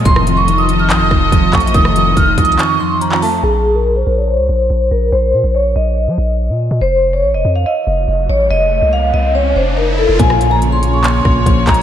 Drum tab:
HH |x-----x-----x-----x-----x-----------x-----x-x-x-|x-----x-----x-----x-x-x-x-----------x-----o-----|------------------------------------------------|------------------------------------------------|
CP |------------------------x-----------------x-----|------------------------x--------------x--------|------------------------------------------------|------------------------------------------------|
SD |---r--------------------------r-----------------|---r--------------------------------------------|------------------------------------------------|------------------------------------------------|
BD |o-----------------------------o-----o-----o-----|o-----------o-----o-----------------------------|------------------------------------------------|------------------------------------------------|

HH |------------------------------------------------|------------------------------------------------|x-----x-----x-----x-----x-----------x-----x-x---|
CP |------------------------------------------------|------------------------------------------------|------------------------x-----------------x-----|
SD |------------------------------------------------|------------------------------------------------|---r--------------------------r-----------------|
BD |------------------------------------------------|------------------------------------------------|o-----------------------------o-----o-----o-----|